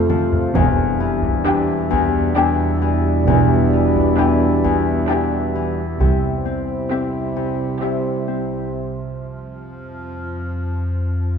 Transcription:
Already playing: synth drone F2, harp F2 C4, trombone section C3 A3, viola section C4, french horn section C4 F4, violin section A4 F5, glass harmonica A4 C5 F5
0.09 harp F3, taiko mid
0.33 taiko low
0.55 double bass section E1, harp E2, cello section E2, synth drone E2, trombone section B2 G3, french horn section D4 E4, glass harmonica G4 D5 E5, taiko
1.00 harp E3
1.24 taiko
1.45 harp E3, viola section D4, violin section G4 G5
1.91 harp E2, taiko
2.36 harp E2, viola section D4, violin section G4 G5
2.82 harp E3
3.27 double bass section E1, harp E2, cello section E2, taiko
3.73 harp E3
3.96 taiko
4.18 harp E3, viola section D4, violin section G4 G5
4.64 harp E2, taiko
5.08 harp E2, viola section D4, violin section G4 G5
5.55 harp E3
5.99 double bass section C2, cello section C2, synth drone C2, trombone section C3 G3, harp C3, french horn section C4 E4, glass harmonica G4 C5 E5, taiko
6.45 harp C4
6.91 viola section C4, harp C4, violin section G4 E5
7.37 harp C3
7.82 harp C3, viola section C4, violin section G4 E5
8.28 harp C4
8.73 synth drone F2

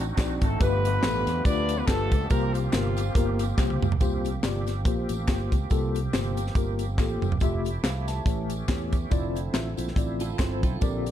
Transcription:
Already playing: fingered electric bass A1, tonewheel organ C4 D4 D#4 F#4
0.17 fingered electric bass A#1, tine electric piano C4 D#4 F#4 D5, kick, snare, clap, closed hi-hat, tambourine
0.42 fingered electric bass G#1, horn section A3 A4, kick, closed hi-hat, tambourine
0.60 fingered electric bass G1, tine electric piano G2 A3 F4 G4 B4, tonewheel organ F3 A3 B3 G4, horn section B3 D4 F4 B4, kick, closed hi-hat, tambourine
0.85 closed hi-hat, tambourine
1.03 fingered electric bass A1, tine electric piano A3 F4 G4 A4, snare, clap, closed hi-hat, tambourine
1.26 fingered electric bass E2, snare, closed hi-hat, tambourine
1.45 fingered electric bass D2, tine electric piano A3 F4 G4 B4, horn section D4 F4 B4 D5, kick, closed hi-hat, tambourine
1.69 closed hi-hat, tambourine
1.77 horn section B3 B4
1.87 fingered electric bass G1, horn section A3 D4 F4 A4, tine electric piano A3 F4 G4 B4, kick, snare, clap, closed hi-hat, tambourine
2.12 fingered electric bass C#2, kick, closed hi-hat, tambourine
2.29 fingered electric bass C2, tine electric piano C3 A#3 F4 G4 C5, horn section A#3 F4 G4 A#4, tonewheel organ A#3 C4, kick, closed hi-hat, tambourine
2.53 horn section F3 A#3 F4, closed hi-hat, tambourine
2.72 fingered electric bass G1, tine electric piano A#3 F4 G4 A#4, snare, clap, closed hi-hat, tambourine
2.97 closed hi-hat, tambourine
3.15 fingered electric bass G1, tine electric piano A#3 F4 G4 A#4, kick, closed hi-hat, tambourine
3.39 closed hi-hat, tambourine
3.57 fingered electric bass C2, tine electric piano A#3 F4 G4 C5, kick, snare, clap, tambourine
3.70 high tom
3.82 fingered electric bass C#2, mid tom, tambourine
3.92 floor tom
4.00 fingered electric bass C2, tine electric piano C3 A#3 F4 G4 C5, tonewheel organ F3 A#3 C4 G4, kick, closed hi-hat, tambourine
4.25 closed hi-hat, tambourine
4.43 fingered electric bass G1, tine electric piano A#3 F4 G4 D5, snare, clap, closed hi-hat, tambourine
4.67 snare, closed hi-hat, tambourine
4.85 fingered electric bass A#1, tine electric piano A#3 F4 G4 C5, kick, closed hi-hat, tambourine
5.09 fingered electric bass A1, closed hi-hat, tambourine
5.28 fingered electric bass G1, tine electric piano A#3 F4 G4 C5, kick, snare, clap, closed hi-hat, tambourine
5.52 fingered electric bass C#2, kick, closed hi-hat, tambourine
5.70 fingered electric bass C2, tine electric piano C3 A#3 F4 G4 A4, kick, closed hi-hat, tambourine
5.95 closed hi-hat, tambourine
6.13 fingered electric bass G1, tine electric piano A#3 F4 G4 C5, snare, clap, closed hi-hat, tambourine
6.37 closed hi-hat, tambourine
6.47 snare
6.55 fingered electric bass G1, tine electric piano A#3 F4 G4 A#4, kick, closed hi-hat, tambourine
6.79 closed hi-hat, tambourine
6.98 fingered electric bass A1, tine electric piano A#3 F4 G4 A4, kick, snare, clap, tambourine
7.22 fingered electric bass F#1, mid tom, tambourine
7.32 floor tom
7.40 fingered electric bass F1, tonewheel organ F3 A3 E4 G4, tine electric piano A3 F4 G4 E5, kick, closed hi-hat, tambourine
7.65 closed hi-hat, tambourine
7.83 fingered electric bass C2, tine electric piano C5 F5, snare, clap, closed hi-hat, tambourine
8.08 tine electric piano E5 A5, snare, closed hi-hat, tambourine
8.25 fingered electric bass A1, tine electric piano A2 A3 E4 G4 C#5, tonewheel organ E3 C#4, kick, closed hi-hat, tambourine
8.50 closed hi-hat, tambourine
8.68 fingered electric bass E2, tine electric piano A3 E4 G4 C#5, kick, snare, clap, closed hi-hat, tambourine
8.93 kick, closed hi-hat, tambourine
9.10 fingered electric bass F1, tonewheel organ D3 F3 C4 E4, tine electric piano C4 E4 F4 D5, kick, closed hi-hat, tambourine
9.35 closed hi-hat, tambourine
9.53 fingered electric bass A1, tine electric piano C4 E4 F4 E5, snare, clap, closed hi-hat, tambourine
9.77 fingered electric bass A#1, tine electric piano C4 E4 F4 C5, closed hi-hat, tambourine
9.88 snare
9.96 fingered electric bass A1, tine electric piano C4 E4 F4 D5, kick, closed hi-hat, tambourine
10.20 clean electric guitar F4 A4, closed hi-hat, tambourine
10.39 fingered electric bass G1, tine electric piano C4 E4 F4 C5, clean electric guitar A4 C5, kick, snare, clap, closed hi-hat, tambourine
10.63 fingered electric bass B1, clean electric guitar F4 A4, kick, closed hi-hat, tambourine
10.80 fingered electric bass A#1, tine electric piano A#2 C4 G4 A#4 D5, tonewheel organ A#3 G4, kick, closed hi-hat, tambourine
11.06 closed hi-hat, tambourine

